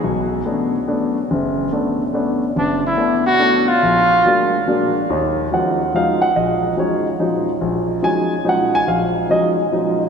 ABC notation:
X:1
M:3/4
L:1/8
Q:"Swing" 1/4=142
K:Bdor
V:1 name="Trumpet"
z6 | z6 | D E2 F2 ^E- | ^E4 z2 |
[K:Ebm] z6 | z6 | z6 | z6 |]
V:2 name="Grand piano"
z6 | z6 | z6 | z6 |
[K:Ebm] z2 g2 f g | e2 d z3 | z2 a2 g a | f2 e z3 |]
V:3 name="Grand piano"
B,,,2 [A,B,CD] z [A,B,CD] z | F,,,2 [A,B,CD] z [A,B,CD] z | F,,,2 [A,B,CD] z [A,B,CD] z | ^A,,,2 [F,G,^A,D] z [F,G,A,D] z |
[K:Ebm] [E,,E,]2 [F,G,A,DE] z [F,G,A,DE] z | B,,,2 [F,G,A,DE] z [F,G,A,DE] z | B,,,2 [F,G,A,DE] z [F,G,A,DE] z | B,,,2 [F,G,A,DE] z [F,G,A,DE] z |]